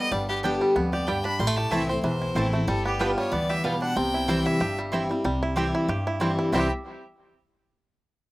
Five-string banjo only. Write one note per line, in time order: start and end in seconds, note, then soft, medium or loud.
0.00 0.11 G3 medium
0.00 0.26 B3 medium
0.12 0.58 G3 medium
0.29 0.73 B3 medium
0.44 0.90 D4 medium
0.61 1.05 G3 medium
0.76 1.22 B3 medium
0.93 1.37 G4 medium
1.08 1.39 G3 medium
1.25 1.40 D4 medium
1.40 1.47 G3 medium
1.47 1.72 A3 medium
1.58 2.01 G4 medium
1.72 2.18 E4 medium
1.89 2.33 C4 medium
2.04 2.50 E3 medium
2.22 2.65 E4 medium
2.36 2.68 C4 medium
2.53 2.68 A3 medium
2.68 3.17 G3 medium
2.86 3.29 B3 medium
3.01 3.47 D4 medium
3.18 3.64 G3 medium
3.33 3.79 B3 medium
3.50 4.60 G4 medium
3.65 4.29 G3 medium
3.82 3.97 D4 medium
3.97 4.43 C4 medium
4.14 4.45 E4 medium
4.29 4.75 G3 medium
4.46 4.90 E4 medium
4.61 5.07 G4 medium
4.79 5.10 G3 medium
4.93 5.25 E4 medium
5.11 5.24 G3 medium
5.25 5.71 G3 medium
5.43 5.73 E4 medium
5.57 5.88 G4 medium
5.75 6.06 E4 medium
5.89 6.35 G4 medium
6.07 6.37 E4 medium
6.21 6.52 G3 medium
6.39 6.53 E4 medium
6.53 6.70 G3 medium
6.53 6.71 C4 medium
6.58 6.72 E4 medium
6.58 6.73 G4 medium